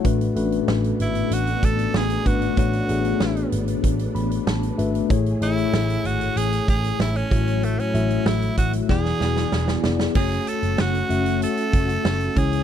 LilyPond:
<<
  \new Staff \with { instrumentName = "Tenor saxophone" } { \time 4/4 \key fis \minor \tempo 4 = 95 r4. e'8 fis'8 a'8 gis'8 fis'8 | fis'4. r2 r8 | r8 e'4 fis'8 gis'8 gis'8 e'16 cis'8. | a16 cis'8. e'8 fis'8 gis'4. r8 |
gis'8 a'8 fis'4 a'4. gis'8 | }
  \new Staff \with { instrumentName = "Tine electric piano" } { \time 4/4 \key fis \minor <a d' fis' b'>8 <a cis' d' fis' b'>2 r4 <a d' fis' b'>8 | <a d' fis' cis''>8 <a d' fis' gis'>2 b''8 a''8 <a d' fis' b' e''>8 | <a e' gis' cis''>8 <a e' gis' cis''>2 r4 <a e' fis' cis''>8~ | <a e' fis' cis''>8 <a e' fis' e''>4. <b e' gis' d''>4. <b e' gis' d''>8 |
<a cis' cis''>4. <a cis' fis' e''>2 <gis cis' e' cis''>8 | }
  \new Staff \with { instrumentName = "Tine electric piano" } { \clef bass \time 4/4 \key fis \minor a,4. r2 r8 | a,4. r2 r8 | a,4. r2 a,8~ | a,4 r4 e4. r8 |
r2. r8 cis8 | }
  \new Staff \with { instrumentName = "String machine" } { \time 4/4 \key fis \minor << { <a d'>1~ | <a d'>1 | <cis' gis'>2.~ <cis' gis'>8 <fis e'>8~ | <fis e'>2 <e b d' gis'>2 |
<a fis'>2.~ <a fis'>8 <e e'>8 | } \\ { b1~ | b1 | a1~ | a2 fis'2 |
cis'2.~ cis'8 cis'8 | } >> }
  \new Staff \with { instrumentName = "Picked electric bass" } { \clef bass \time 4/4 \key fis \minor a,,8 a,,8 a,,8 gis,,8 a,,8 a,,8 a,,8 gis,,8 | a,,8 a,,8 a,,8 gis,,8 a,,8 a,,8 a,,8 gis,,8 | a,,8 a,,8 a,,8 gis,,8 a,,8 a,,8 a,,8 a,,8~ | a,,8 a,,8 a,,8 a,,8 e,,8 e,,8 e,,8 f,,8 |
fis,,8 r16 fis,,16 fis,,8 fis,,8. r16 fis,,8 fis,,8 cis,8 | }
  \new DrumStaff \with { instrumentName = "Drums" } \drummode { \time 4/4 <hh bd>16 hh16 hh16 hh16 sn16 hh16 hh16 hh16 hh16 hh16 <hh bd>16 hh16 sn16 hh16 <hh bd>16 hh16 | <hh bd>16 hh16 hh16 hh16 sn16 hh16 hh16 hh16 <hh bd>16 hh16 hh16 hh16 sn16 hh16 hh16 hh16 | <hh bd>16 hh16 hh16 hh16 sn16 hh16 hh16 hh16 hh16 hh16 <hh bd>16 hh16 sn16 hh16 <hh bd>16 hh16 | hh16 hh16 hh16 hh16 sn16 hh16 <hh bd>16 hh16 <bd sn>16 sn16 sn16 sn16 sn16 sn16 sn16 sn16 |
<cymc bd>16 hh16 hh16 hh16 sn16 hh16 hh16 hh16 hh16 hh16 <hh bd>16 hh16 sn16 hh16 <hh bd>16 hh16 | }
>>